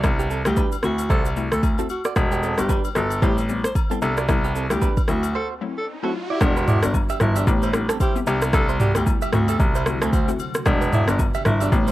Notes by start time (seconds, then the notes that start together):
0.04 C2 G3 B3 D4 E4, kick, cross-stick, high agogo, shaker
0.19 B3 G4, shaker
0.31 C4 A4, shaker
0.45 D2 G3 B3 D4 E4 G4, cross-stick, high agogo, shaker
0.57 D4 B4, kick, low woodblock, shaker
0.72 high agogo, shaker
0.83 D2 A3 C4 E4 F#4, cross-stick, shaker
0.98 high agogo, shaker
1.10 C2 F#4 A4 C5, kick, shaker
1.25 high agogo, shaker
1.36 A3 C4 E4 F#4, shaker
1.52 D2 A4, cross-stick, shaker
1.63 kick, high agogo, low woodblock, shaker
1.79 A3 C4 E4 F#4 A4, shaker
1.89 F#4, high agogo, shaker
2.05 F#4 D5, cross-stick, shaker
2.16 E1 G3 B3 D4 F#4, kick, cross-stick, high agogo, shaker
2.32 B3 G4, shaker
2.43 C4 A4, shaker
2.58 G1 G3 B3 D4 F#4 G4, cross-stick, high agogo, shaker
2.69 D4 B4, kick, low woodblock, shaker
2.85 high agogo, shaker
2.95 G1 G3 B3 D4 F#4 A4, cross-stick, shaker
3.11 high agogo, shaker
3.22 A1 G3 B3 C4 E4 G4 C5, kick, shaker
3.38 high agogo, shaker
3.49 G3 B3 C4 E4, shaker
3.64 C5, cross-stick, shaker
3.75 kick, high agogo, low woodblock, shaker
3.91 G3 B3 C4 E4 A4, shaker
4.02 C2 G3 B3 D4 E4 A4, high agogo, shaker
4.17 F#4 D5, cross-stick, shaker
4.29 C2 G3 B3 D4 E4, kick, cross-stick, riser, high agogo, shaker
4.44 B3 G4, shaker
4.55 C4 A4, shaker
4.70 D2 G3 B3 D4 E4 G4, cross-stick, high agogo, shaker
4.82 D4 B4, kick, low woodblock, shaker
4.97 kick, high agogo, shaker
5.08 D2 F#3 A3 C4 E4 F#4, cross-stick, shaker
5.23 high agogo, shaker
5.35 F#4 A4 C5
5.61 F#3 A3 C4 E4
5.78 A4
6.03 F#3 A3 C4 E4 F#4 A4
6.30 E4 F#4 D5
6.41 E1 G3 B3 D4 F#4, kick, cross-stick, high agogo, shaker
6.57 D4 B4, shaker
6.68 E4 F#4 D5, mid tom, shaker
6.83 G1 G3 B3 D4 F#4, cross-stick, high agogo, shaker
6.94 kick, low woodblock, shaker
7.09 G4 E5, high agogo, shaker
7.20 G1 G3 B3 D4 E4 F#4, cross-stick, mid tom, shaker
7.36 D4 G4 E5, high agogo, shaker
7.47 A1 B3 C4 E4 G4, kick, shaker
7.62 E4 C5, high agogo, shaker
7.73 B3 C4 E4 G4, cross-stick, shaker
7.89 C4 A4, cross-stick, shaker
8.00 E4 G4 C5, kick, high agogo, shaker
8.15 B3 C4 E4 G4, shaker
8.27 C2 C3 D3 B3 D4 E4 G4, high agogo, shaker
8.42 cross-stick, shaker
8.53 C2 B3 D4 E4 G4 A4, kick, cross-stick, high agogo, shaker
8.69 E4 C5, shaker
8.80 F#4 G4 D5, mid tom, shaker
8.95 D2 B3 D4 E4 G4, cross-stick, high agogo, shaker
9.07 kick, low woodblock, shaker
9.22 G4 E5, high agogo, shaker
9.32 D2 A3 C4 E4 F#4, cross-stick, mid tom, shaker
9.48 G4 A4 E5, high agogo, shaker
9.60 C2, kick, shaker
9.75 E4 C5, high agogo, shaker
9.86 A3 C4 E4 F#4, cross-stick, shaker
10.01 D2 C4 A4, cross-stick, shaker
10.13 F#4 C5, kick, high agogo, shaker
10.28 A3 C4 E4 F#4, shaker
10.39 high agogo, shaker
10.54 cross-stick, shaker
10.66 E1 G3 B3 D4 F#4, kick, cross-stick, high agogo, shaker
10.81 D4 B4, shaker
10.92 E4 F#4 D5, mid tom, shaker
11.07 G1 G3 B3 D4 F#4, cross-stick, high agogo, shaker
11.19 kick, low woodblock, shaker
11.34 G4 E5, high agogo, shaker
11.45 G1 G3 B3 D4 E4 F#4, cross-stick, mid tom, shaker
11.60 D4 G4 E5, high agogo, shaker
11.72 A1 G3 B3 C4 E4, kick, shaker
11.88 E4 C5, high agogo, shaker